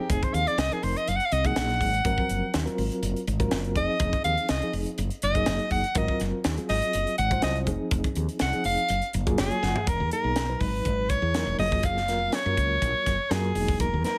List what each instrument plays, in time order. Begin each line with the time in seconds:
Already playing: reed electric piano F3 C4 D#4 G#4
0.00 soprano saxophone G4
0.10 fretless electric bass F1, soprano saxophone G#4, kick, closed hi-hat
0.23 soprano saxophone C5, kick, closed hi-hat
0.34 fretless electric bass D#2, soprano saxophone F5, closed hi-hat
0.47 soprano saxophone D5, closed hi-hat
0.58 fretless electric bass C2, soprano saxophone D#5, snare, closed hi-hat
0.72 reed electric piano F3 C4 D#4 A#4, soprano saxophone G#4, muted fretless electric bass stroke, closed hi-hat
0.83 fretless electric bass F1, soprano saxophone C5, open hi-hat
0.96 soprano saxophone D#5, closed hi-hat
1.08 fretless electric bass F#1, soprano saxophone F5, closed hi-hat
1.16 soprano saxophone F#5, closed hi-hat
1.26 soprano saxophone F5
1.32 fretless electric bass C2, soprano saxophone D#5, closed hi-hat
1.45 reed electric piano F#3 A#3 D#4 G#4, soprano saxophone F#5, kick, closed hi-hat
1.56 fretless electric bass A#1, snare, closed hi-hat
1.69 snare, closed hi-hat
1.81 fretless electric bass G#1, kick, open hi-hat
1.94 closed hi-hat
2.05 fretless electric bass G#1, reed electric piano F3 F#3 C4 A#4, kick, closed hi-hat
2.18 kick
2.29 fretless electric bass F#1, closed hi-hat
2.54 fretless electric bass D#2, snare, closed hi-hat
2.66 reed electric piano F#3 C4 F4 A#4, muted fretless electric bass stroke, closed hi-hat
2.78 fretless electric bass G#1, open hi-hat
2.92 closed hi-hat
3.02 fretless electric bass F#1, closed hi-hat
3.16 closed hi-hat
3.27 fretless electric bass G#1, closed hi-hat
3.40 reed electric piano F#3 C4 F4 A#4, kick, closed hi-hat
3.51 fretless electric bass F#1, snare, closed hi-hat
3.64 closed hi-hat
3.76 fretless electric bass F1, reed electric piano F3 C4 D#4 G#4, soprano saxophone D#5, kick, closed hi-hat
4.00 fretless electric bass F1, kick, closed hi-hat
4.13 kick, closed hi-hat
4.24 fretless electric bass D#2, soprano saxophone F5, closed hi-hat
4.38 closed hi-hat
4.49 fretless electric bass C2, soprano saxophone D#5, snare, closed hi-hat
4.62 reed electric piano F3 C4 D#4 G#4, muted fretless electric bass stroke, closed hi-hat
4.73 fretless electric bass F1, open hi-hat
4.86 closed hi-hat
4.98 fretless electric bass F#1, closed hi-hat
5.10 closed hi-hat
5.22 fretless electric bass F#1, soprano saxophone D#5, closed hi-hat
5.35 reed electric piano F#3 A#3 D#4 G#4, kick, closed hi-hat
5.46 fretless electric bass F#1, snare, closed hi-hat
5.59 closed hi-hat
5.71 fretless electric bass F#1, soprano saxophone F#5, kick, open hi-hat
5.84 closed hi-hat
5.95 fretless electric bass G#1, reed electric piano F#3 C4 F4 A#4, soprano saxophone D#5, kick, closed hi-hat
6.08 kick
6.20 fretless electric bass F#1, snare, closed hi-hat
6.44 fretless electric bass D#2, snare, closed hi-hat
6.58 reed electric piano F#3 C4 F4 G#4, muted fretless electric bass stroke, closed hi-hat
6.69 fretless electric bass G#1, soprano saxophone D#5, snare, open hi-hat
6.82 closed hi-hat
6.93 fretless electric bass F#1, closed hi-hat
7.07 closed hi-hat
7.18 fretless electric bass G#1, soprano saxophone F#5, closed hi-hat
7.31 reed electric piano F#3 C4 F4 C5, kick, closed hi-hat
7.42 fretless electric bass C2, soprano saxophone D#5, snare, closed hi-hat
7.55 closed hi-hat
7.67 fretless electric bass F1, reed electric piano F3 C4 D#4 G#4, kick, closed hi-hat
7.91 fretless electric bass F1, kick, closed hi-hat
8.04 kick, closed hi-hat
8.15 fretless electric bass D#2, closed hi-hat
8.29 closed hi-hat
8.39 fretless electric bass C2, soprano saxophone F#5, snare, closed hi-hat
8.53 reed electric piano F3 C4 D#4 G#4, muted fretless electric bass stroke, closed hi-hat
8.64 fretless electric bass F1, soprano saxophone F5, open hi-hat
8.77 closed hi-hat
8.89 fretless electric bass F#1, closed hi-hat
9.02 closed hi-hat
9.13 fretless electric bass F#1, closed hi-hat
9.27 reed electric piano F#3 A#3 F4 G#4, kick, closed hi-hat
9.38 fretless electric bass F#1, soprano saxophone G#4, reed electric piano C#5, snare, closed hi-hat
9.51 closed hi-hat
9.63 fretless electric bass F#1, reed electric piano F#5, snare
9.76 floor tom
9.87 fretless electric bass E1, soprano saxophone A#4, kick, closed hi-hat
10.00 fretless electric bass E2
10.11 reed electric piano F#3 A#3 D#4 G#4, soprano saxophone A#4, muted fretless electric bass stroke, closed hi-hat
10.24 fretless electric bass B1
10.36 snare, closed hi-hat
10.49 reed electric piano A#2 F#3 D#4 B4
10.60 fretless electric bass G#1, soprano saxophone B4, kick, open hi-hat
10.85 fretless electric bass G#1, kick, closed hi-hat
11.09 soprano saxophone C#5, kick, closed hi-hat
11.22 fretless electric bass E2
11.34 reed electric piano F#3 A#3 D#4 A#4, snare, closed hi-hat
11.47 fretless electric bass E1
11.59 fretless electric bass F#1, reed electric piano F#3 A#3 F4 G#4, soprano saxophone D#5, open hi-hat
11.72 kick
11.83 soprano saxophone F5, kick, closed hi-hat
11.97 snare
12.07 fretless electric bass F1, reed electric piano F#3 A#3 F4 A#4, snare, closed hi-hat
12.32 soprano saxophone C#5, snare, closed hi-hat
12.45 fretless electric bass F#2, reed electric piano F#3 A#3 F4 A#4
12.57 fretless electric bass C#2, kick, closed hi-hat
12.82 fretless electric bass A#1, kick, closed hi-hat
13.06 fretless electric bass F#1, kick, snare, closed hi-hat
13.31 fretless electric bass F#2, reed electric piano F#3 A#3 F4 A#4, soprano saxophone G#4, snare, closed hi-hat
13.55 fretless electric bass E1, reed electric piano F#3 A#3 D#4 G#4, open hi-hat
13.68 kick
13.80 soprano saxophone A#4, kick, closed hi-hat
13.94 fretless electric bass E2
14.04 reed electric piano F#3 A#3 D#4 B4, soprano saxophone A#4, muted fretless electric bass stroke, snare, closed hi-hat